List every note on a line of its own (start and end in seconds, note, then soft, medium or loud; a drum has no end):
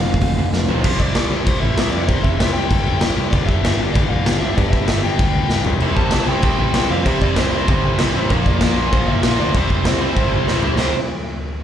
0.00 0.16 F1 medium
0.00 0.48 F5 medium
0.06 0.21 F2 medium
0.06 0.21 C3 medium
0.06 0.20 F3 medium
0.06 0.21 A3 loud
0.14 kick medium
0.21 0.47 D2 medium
0.21 0.37 F2 medium
0.21 0.37 C3 medium
0.21 0.36 F3 medium
0.21 0.36 A3 medium
0.21 kick loud
0.21 open hi-hat medium
0.37 0.52 F2 medium
0.37 0.52 C3 medium
0.37 0.52 F3 medium
0.37 0.52 A3 medium
0.53 0.66 F1 medium
0.53 0.67 F2 medium
0.53 0.68 C3 medium
0.53 0.67 F3 medium
0.53 0.68 A3 medium
0.53 snare medium
0.68 0.86 F1 loud
0.68 0.83 F2 medium
0.68 0.84 C3 medium
0.68 0.83 F3 medium
0.68 0.84 A3 medium
0.68 0.84 C4 loud
0.68 floor tom medium
0.84 1.11 C2 loud
0.84 1.15 C3 loud
0.84 1.16 G3 loud
0.84 1.16 C4 loud
0.84 1.17 E4 loud
0.84 1.17 G4 loud
0.84 0.99 C5 loud
0.84 kick loud
0.84 crash loud
0.84 crash medium
0.99 1.31 D5 medium
0.99 kick medium
1.15 1.29 C2 loud
1.15 1.33 C3 medium
1.15 1.33 G3 medium
1.15 1.33 C4 medium
1.15 1.32 E4 loud
1.15 1.31 G4 loud
1.15 snare loud
1.15 crash medium
1.31 1.44 C2 loud
1.31 1.46 C3 medium
1.31 1.47 G3 medium
1.31 1.47 C4 loud
1.31 1.47 E4 loud
1.31 1.48 G4 loud
1.47 1.60 C2 medium
1.47 1.77 C3 medium
1.47 1.78 G3 loud
1.47 1.78 C4 loud
1.47 1.79 E4 loud
1.47 1.80 G4 loud
1.47 1.61 C5 medium
1.47 kick loud
1.47 crash medium
1.62 1.75 A1 medium
1.62 1.90 E5 medium
1.78 1.91 C2 medium
1.78 1.95 C3 medium
1.78 1.95 G3 medium
1.78 1.94 C4 loud
1.78 1.93 E4 medium
1.78 1.94 G4 loud
1.78 snare loud
1.78 crash medium
1.91 2.07 F2 loud
1.91 2.09 E4 medium
1.91 2.10 G4 loud
1.91 2.08 D5 medium
1.95 2.07 C3 medium
1.95 2.09 G3 medium
1.95 2.08 C4 loud
2.07 2.39 C3 loud
2.07 2.35 C3 medium
2.07 2.40 G3 loud
2.07 2.40 C4 loud
2.07 2.40 E4 loud
2.07 2.42 G4 loud
2.07 2.24 C5 loud
2.07 kick loud
2.07 crash medium
2.23 2.37 E5 loud
2.23 kick medium
2.38 2.66 C2 medium
2.38 2.55 C3 loud
2.38 2.56 G3 loud
2.38 2.55 C4 medium
2.38 2.54 E4 loud
2.38 2.54 G4 medium
2.38 2.53 E5 loud
2.38 snare loud
2.38 crash medium
2.53 2.68 C3 loud
2.53 2.70 G3 loud
2.53 2.70 C4 loud
2.53 2.70 E4 loud
2.53 2.71 G4 loud
2.53 3.13 G5 loud
2.70 2.97 G1 loud
2.70 2.99 C3 loud
2.70 3.01 G3 loud
2.70 3.01 C4 loud
2.70 3.01 E4 loud
2.70 3.02 G4 loud
2.70 kick loud
2.70 crash medium
3.00 3.15 C2 medium
3.00 3.18 C3 medium
3.00 3.19 G3 loud
3.00 3.18 C4 loud
3.00 3.17 E4 loud
3.00 3.17 G4 loud
3.00 snare loud
3.00 crash medium
3.17 3.30 C2 loud
3.17 3.33 C3 medium
3.17 3.34 G3 medium
3.17 3.33 C4 medium
3.17 3.33 E4 loud
3.17 3.35 G4 loud
3.31 3.59 G1 loud
3.31 3.63 G2 loud
3.31 3.63 D3 loud
3.31 3.64 G3 loud
3.31 3.65 B3 loud
3.31 3.45 D5 loud
3.31 kick loud
3.31 crash medium
3.35 3.65 D4 loud
3.35 3.65 G4 loud
3.45 3.78 E5 loud
3.45 kick loud
3.63 3.77 G1 medium
3.63 3.80 G2 loud
3.63 3.80 D3 medium
3.63 3.80 G3 medium
3.63 3.79 B3 medium
3.63 3.79 D4 loud
3.63 3.79 G4 loud
3.63 snare loud
3.63 crash medium
3.79 3.93 G1 loud
3.79 3.93 G2 medium
3.79 3.94 D3 medium
3.79 3.94 G3 loud
3.79 3.95 B3 loud
3.79 3.95 D4 loud
3.79 3.96 G4 loud
3.93 4.08 G1 medium
3.93 4.24 G2 medium
3.93 4.25 D3 loud
3.93 4.26 G3 loud
3.93 4.26 B3 loud
3.93 4.26 D4 loud
3.93 4.27 G4 loud
3.93 4.08 D5 medium
3.93 kick loud
3.93 crash medium
4.08 4.24 F1 medium
4.08 4.39 F5 loud
4.25 4.39 G1 medium
4.25 4.43 G2 loud
4.25 4.43 D3 loud
4.25 4.43 G3 loud
4.25 4.42 B3 loud
4.25 4.41 D4 loud
4.25 4.41 G4 loud
4.25 snare loud
4.25 crash medium
4.39 4.55 C2 medium
4.39 4.57 G3 medium
4.39 4.57 B3 medium
4.39 4.57 D4 loud
4.39 4.58 G4 medium
4.39 4.56 E5 medium
4.44 4.55 G2 medium
4.44 4.56 D3 medium
4.56 4.87 G2 loud
4.56 4.83 G2 medium
4.56 4.88 D3 loud
4.56 4.89 G3 loud
4.56 4.89 B3 loud
4.56 4.90 D4 loud
4.56 4.91 G4 loud
4.56 4.70 D5 loud
4.56 kick loud
4.56 crash medium
4.70 4.86 E5 loud
4.70 kick medium
4.87 5.14 G1 medium
4.87 5.05 G2 medium
4.87 5.05 D3 medium
4.87 5.06 G3 loud
4.87 5.04 B3 medium
4.87 5.04 D4 loud
4.87 5.04 E5 loud
4.87 snare loud
4.87 crash medium
4.91 5.04 G4 loud
5.04 5.19 G2 medium
5.04 5.19 D3 loud
5.04 5.21 G3 loud
5.04 5.20 B3 loud
5.04 5.21 D4 loud
5.04 5.22 G4 loud
5.04 5.62 G5 medium
5.19 5.45 D2 medium
5.19 5.50 G2 loud
5.19 5.50 D3 loud
5.19 5.51 G3 loud
5.19 5.51 B3 loud
5.19 5.52 D4 loud
5.19 5.53 G4 loud
5.19 kick loud
5.19 crash medium
5.50 5.64 G1 medium
5.50 5.66 G2 loud
5.50 5.66 D3 medium
5.50 5.66 G3 medium
5.50 5.66 B3 loud
5.50 5.67 D4 loud
5.50 8.34 G4 loud
5.50 snare medium
5.65 5.79 C2 loud
5.65 5.82 C3 loud
5.65 5.82 G3 loud
5.65 5.81 C4 loud
5.65 5.81 E4 loud
5.65 floor tom loud
5.80 6.08 C2 loud
5.80 6.14 C3 medium
5.80 6.13 G3 loud
5.80 6.13 C4 loud
5.80 6.13 E4 loud
5.80 crash medium
5.97 6.03 A5 loud
5.97 kick medium
6.04 6.28 A5 loud
6.11 6.26 C2 medium
6.11 6.27 C3 medium
6.11 6.28 G3 medium
6.11 6.28 C4 medium
6.11 6.29 E4 medium
6.11 snare loud
6.11 crash medium
6.28 6.41 C2 medium
6.28 6.45 C3 medium
6.28 6.44 G3 medium
6.28 6.43 C4 loud
6.28 6.43 E4 loud
6.28 6.42 G5 medium
6.42 6.56 C2 medium
6.42 6.75 C3 loud
6.42 6.75 G3 loud
6.42 6.74 C4 loud
6.42 6.73 E4 loud
6.42 6.58 G5 loud
6.42 kick loud
6.42 crash medium
6.58 6.72 A1 medium
6.58 6.90 G5 loud
6.74 6.88 C2 medium
6.74 6.89 C3 medium
6.74 6.90 G3 medium
6.74 6.90 C4 loud
6.74 6.91 E4 loud
6.74 snare loud
6.74 crash medium
6.90 7.03 F2 loud
6.90 7.06 C3 medium
6.90 7.06 G3 medium
6.90 7.05 C4 medium
6.90 7.05 E4 loud
6.90 7.06 F5 medium
7.06 7.32 C3 loud
7.06 7.37 C3 medium
7.06 7.36 G3 loud
7.06 7.36 C4 loud
7.06 7.35 E4 loud
7.06 7.22 E5 loud
7.06 kick loud
7.06 crash medium
7.22 7.38 D5 loud
7.22 kick medium
7.36 7.63 C2 medium
7.36 7.52 C3 medium
7.36 7.52 G3 medium
7.36 7.53 C4 loud
7.36 7.53 E4 loud
7.36 7.69 C5 medium
7.36 snare loud
7.36 crash medium
7.53 7.69 C3 loud
7.53 7.68 G3 loud
7.53 7.68 C4 loud
7.53 7.67 E4 loud
7.68 7.94 G1 medium
7.68 8.00 C3 loud
7.68 8.00 G3 loud
7.68 7.99 C4 medium
7.68 7.98 E4 loud
7.68 kick loud
7.68 crash medium
7.99 8.13 C2 loud
7.99 8.13 C3 loud
7.99 8.14 G3 medium
7.99 8.14 C4 loud
7.99 8.15 E4 loud
7.99 snare loud
7.99 crash medium
8.15 8.28 A1 loud
8.15 8.29 C3 medium
8.15 8.30 G3 loud
8.15 8.30 C4 loud
8.15 8.30 E4 loud
8.30 8.56 A#1 loud
8.30 8.59 A#2 loud
8.30 8.61 D3 medium
8.30 8.61 F3 loud
8.30 8.61 A#3 loud
8.30 8.61 F4 loud
8.30 8.35 A#4 loud
8.30 kick loud
8.30 crash medium
8.46 8.75 D5 loud
8.46 kick loud
8.61 8.74 A#1 medium
8.61 8.78 A#2 loud
8.61 8.77 D3 medium
8.61 8.77 F3 medium
8.61 8.76 A#3 medium
8.61 8.75 F4 loud
8.61 snare loud
8.61 crash medium
8.76 8.90 A#1 loud
8.76 8.91 A#2 medium
8.76 8.91 D3 medium
8.76 8.92 F3 medium
8.76 8.92 A#3 loud
8.76 8.92 F4 loud
8.92 9.05 A#1 loud
8.92 9.22 A#2 loud
8.92 9.23 D3 loud
8.92 9.23 F3 loud
8.92 9.23 A#3 loud
8.92 9.24 F4 loud
8.92 9.07 C5 medium
8.92 kick loud
8.92 crash medium
9.08 9.21 G1 medium
9.08 9.39 E5 loud
9.23 9.37 A#1 medium
9.23 9.39 A#2 medium
9.23 9.39 D3 medium
9.23 9.39 F3 loud
9.23 9.38 A#3 loud
9.23 9.38 F4 loud
9.23 snare loud
9.23 crash medium
9.39 9.52 D2 loud
9.39 9.54 A#2 medium
9.39 9.54 D3 medium
9.39 9.54 F3 medium
9.39 9.54 A#3 loud
9.39 9.54 F4 loud
9.39 9.56 D5 loud
9.54 9.81 C2 loud
9.54 9.84 C3 loud
9.54 9.85 G3 loud
9.54 9.86 C4 loud
9.54 9.86 E4 loud
9.54 10.64 C5 loud
9.54 kick loud
9.54 crash medium
9.70 kick medium
9.85 10.11 C2 medium
9.85 10.01 C3 medium
9.85 10.00 G3 medium
9.85 10.00 C4 loud
9.85 9.99 E4 medium
9.85 snare loud
9.85 crash medium
10.00 10.14 C3 medium
10.00 10.15 G3 medium
10.00 10.15 C4 loud
10.00 10.16 E4 loud
10.15 10.42 G1 medium
10.15 10.47 C3 loud
10.15 10.47 G3 loud
10.15 10.48 C4 loud
10.15 10.49 E4 loud
10.15 kick loud
10.15 crash medium
10.47 10.61 C2 medium
10.47 10.64 C3 loud
10.47 10.63 G3 loud
10.47 10.63 C4 loud
10.47 10.63 E4 loud
10.47 snare medium
10.62 10.76 C2 loud
10.62 10.78 C3 medium
10.62 10.78 G3 medium
10.62 10.79 C4 medium
10.62 10.78 E4 loud
10.62 floor tom medium
10.78 10.93 C2 medium
10.78 10.91 C3 medium
10.78 10.92 G3 loud
10.78 10.92 C4 loud
10.78 10.92 E4 loud
10.78 10.93 C5 medium
10.78 snare loud
10.78 china medium